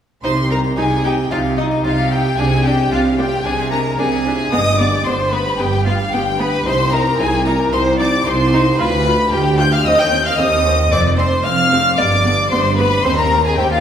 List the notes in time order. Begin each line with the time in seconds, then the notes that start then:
0.24 C2 C3 D#4 C5 C6
0.37 G4
0.50 D#4 A#4 A#5
0.64 G4
0.77 C2 C3 D#4 F4 G#4 G#5
0.91 G4
1.04 D#4 G4 G5
1.18 G4
1.30 C2 C3 C4 D#4 F4 F5
1.44 G4
1.57 D#4 D#5
1.71 G4
1.84 C2 C3 D#4 F4 F5
1.98 G4
2.11 D#4 G4 G5
2.25 G4
2.37 C2 C3 D4 G#4 G#5
2.52 G#4
2.64 G#3 D4 G4 G5
2.78 G#4
2.91 C2 C3 D4 F4 G4 F5
3.05 G#4
3.18 D4 F4 G4 G5
3.32 G#4
3.44 C2 C3 D4 G#4 G#5
3.59 F4
3.71 G#3 D4 A#4 A#5
3.86 G#4
3.98 C2 C3 D4 G4 G#4 G#5
4.12 G#4
4.25 D4 F4
4.39 G#4
4.52 G1 G2 B3 D#5 D#6
4.66 G4
4.79 B3 D5 D6
4.92 G4
5.05 G1 G2 B3 F4 C5 C6
5.20 G4
5.32 B3 B4 B5
5.46 G4
5.58 G1 G2 B3 G4 G5
5.73 G4
5.85 B3 F4 F5
6.00 G4
6.12 G1 G2 B3 F4 G4 G5
6.26 G4
6.39 B3 B4 B5
6.53 G4
6.66 C2 D#4 C5 C6
6.79 G4
6.92 D#4 A#4 A#5
7.06 G4
7.18 C2 D#4 F4 G#4 G#5
7.33 G4
7.45 D#4 A#4 A#5
7.59 G4
7.72 C2 C4 D#4 C5 C6
7.86 G4
7.99 D#4 D5 D6
8.13 G4
8.25 C2 D#4 F4 C5 C6
8.40 G4
8.53 D#4
8.66 G4
8.79 D2 F4 B4 B5
8.93 G4
9.05 F4
9.20 G4
9.32 D2 F4 G4 G5
9.46 G4
9.58 F4 G5 G6
9.72 G4 F5 F6
9.85 D#2 C4 D#5 D#6
9.98 D#5 G5 G6
10.12 C4 D#4
10.25 D#5 F5 F6
10.38 D#2 C4 D5 D#5 D#6
10.52 D#5
10.65 C4 C5
10.78 D#5
10.91 F1 F2 C4 D5 D6
11.05 D5
11.17 C4 D4 C5 C6
11.32 D5
11.44 F1 F2 C4 C5 F5 F6
11.59 D5
11.72 C4 C5
11.86 D5
11.98 G1 G2 B3 D5 D6
12.12 D5
12.25 B3 D4
12.39 D5
12.51 G1 G2 B3 C5 C6
12.66 D5
12.77 B3 B4 B5
12.93 D5
13.04 D#2 C4 C5 C6
13.18 A#4 D#5 A#5
13.32 C4 D#4
13.45 G#4 D#5 G#5
13.58 D#2 C4 G4 D5 G5
13.72 F4 D#5 F5